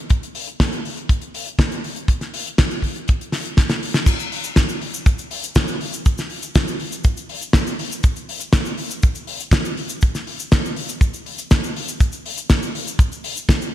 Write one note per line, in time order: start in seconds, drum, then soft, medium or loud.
0.10 kick loud
0.10 closed hi-hat medium
0.23 closed hi-hat medium
0.35 open hi-hat loud
0.47 closed hi-hat medium
0.60 kick loud
0.60 snare loud
0.60 closed hi-hat medium
0.73 closed hi-hat medium
0.85 open hi-hat loud
0.97 closed hi-hat soft
1.09 kick loud
1.09 closed hi-hat loud
1.22 closed hi-hat medium
1.34 open hi-hat loud
1.47 closed hi-hat medium
1.59 kick loud
1.59 snare loud
1.59 closed hi-hat loud
1.72 closed hi-hat medium
1.84 open hi-hat loud
1.96 closed hi-hat medium
2.08 kick loud
2.08 closed hi-hat medium
2.21 snare soft
2.21 closed hi-hat medium
2.34 open hi-hat loud
2.46 closed hi-hat medium
2.58 kick loud
2.58 snare loud
2.58 closed hi-hat loud
2.71 closed hi-hat medium
2.82 kick medium
2.82 open hi-hat loud
2.96 closed hi-hat medium
3.08 kick loud
3.08 closed hi-hat medium
3.21 closed hi-hat medium
3.32 snare medium
3.32 open hi-hat loud
3.45 closed hi-hat medium
3.57 kick loud
3.57 snare medium
3.57 closed hi-hat loud
3.69 snare medium
3.69 closed hi-hat medium
3.83 open hi-hat loud
3.94 snare medium
3.94 closed hi-hat medium
4.06 kick loud
4.06 closed hi-hat medium
4.06 crash medium
4.06 cabasa medium
4.19 closed hi-hat medium
4.19 cabasa soft
4.32 open hi-hat loud
4.44 closed hi-hat medium
4.44 cabasa medium
4.56 kick loud
4.56 snare loud
4.56 closed hi-hat medium
4.56 cabasa medium
4.69 closed hi-hat medium
4.69 cabasa soft
4.81 open hi-hat loud
4.94 closed hi-hat medium
4.94 cabasa medium
5.06 kick loud
5.06 closed hi-hat medium
5.06 cabasa medium
5.18 closed hi-hat soft
5.18 cabasa soft
5.31 open hi-hat loud
5.43 closed hi-hat medium
5.43 cabasa medium
5.55 kick loud
5.55 snare loud
5.55 closed hi-hat medium
5.55 cabasa medium
5.68 closed hi-hat soft
5.68 cabasa soft
5.81 open hi-hat loud
5.93 closed hi-hat medium
5.93 cabasa medium
6.05 kick loud
6.05 closed hi-hat medium
6.05 cabasa medium
6.18 snare soft
6.18 closed hi-hat soft
6.18 cabasa medium
6.30 open hi-hat medium
6.43 closed hi-hat medium
6.43 cabasa medium
6.55 kick loud
6.55 snare loud
6.55 closed hi-hat medium
6.55 cabasa medium
6.67 closed hi-hat soft
6.67 cabasa medium
6.79 open hi-hat loud
6.92 closed hi-hat medium
6.92 cabasa medium
7.04 kick loud
7.04 closed hi-hat medium
7.04 cabasa medium
7.17 closed hi-hat medium
7.17 cabasa soft
7.29 open hi-hat loud
7.41 closed hi-hat medium
7.41 cabasa medium
7.53 kick loud
7.53 snare loud
7.53 closed hi-hat medium
7.53 cabasa medium
7.67 closed hi-hat soft
7.67 cabasa medium
7.79 open hi-hat loud
7.91 closed hi-hat medium
7.91 cabasa medium
8.03 kick loud
8.03 closed hi-hat medium
8.03 cabasa medium
8.16 closed hi-hat soft
8.16 cabasa soft
8.29 open hi-hat loud
8.40 closed hi-hat medium
8.40 cabasa medium
8.53 kick loud
8.53 snare loud
8.53 closed hi-hat medium
8.53 cabasa medium
8.65 closed hi-hat soft
8.65 cabasa soft
8.77 open hi-hat loud
8.90 closed hi-hat medium
8.90 cabasa medium
9.02 kick loud
9.02 closed hi-hat medium
9.02 cabasa medium
9.15 closed hi-hat soft
9.15 cabasa medium
9.27 open hi-hat loud
9.40 closed hi-hat medium
9.40 cabasa medium
9.51 kick loud
9.51 snare loud
9.51 closed hi-hat medium
9.51 cabasa medium
9.65 closed hi-hat soft
9.65 cabasa soft
9.77 open hi-hat medium
9.89 closed hi-hat medium
9.89 cabasa medium
10.01 kick loud
10.01 closed hi-hat medium
10.01 cabasa medium
10.15 snare soft
10.15 closed hi-hat soft
10.15 cabasa soft
10.27 open hi-hat medium
10.39 closed hi-hat medium
10.39 cabasa medium
10.52 kick loud
10.52 snare loud
10.52 closed hi-hat medium
10.52 cabasa medium
10.64 closed hi-hat soft
10.64 cabasa soft
10.76 open hi-hat loud
10.89 closed hi-hat medium
10.89 cabasa medium
11.01 kick loud
11.01 closed hi-hat medium
11.01 cabasa medium
11.14 closed hi-hat soft
11.14 cabasa medium
11.26 open hi-hat loud
11.38 closed hi-hat medium
11.38 cabasa medium
11.51 kick loud
11.51 snare loud
11.51 closed hi-hat medium
11.51 cabasa medium
11.63 closed hi-hat soft
11.63 cabasa medium
11.76 open hi-hat loud
11.88 closed hi-hat medium
11.88 cabasa medium
12.00 kick loud
12.00 closed hi-hat medium
12.00 cabasa medium
12.12 closed hi-hat medium
12.12 cabasa medium
12.26 open hi-hat loud
12.37 closed hi-hat medium
12.37 cabasa medium
12.50 kick loud
12.50 snare loud
12.50 closed hi-hat medium
12.50 cabasa medium
12.63 closed hi-hat soft
12.63 cabasa medium
12.75 open hi-hat loud
12.87 closed hi-hat medium
12.87 cabasa medium
12.99 kick loud
12.99 closed hi-hat medium
12.99 cabasa medium
13.12 closed hi-hat soft
13.12 cabasa soft
13.24 open hi-hat loud
13.36 closed hi-hat medium
13.36 cabasa medium
13.49 kick loud
13.49 snare loud
13.49 closed hi-hat medium
13.49 cabasa medium
13.61 closed hi-hat soft
13.61 cabasa soft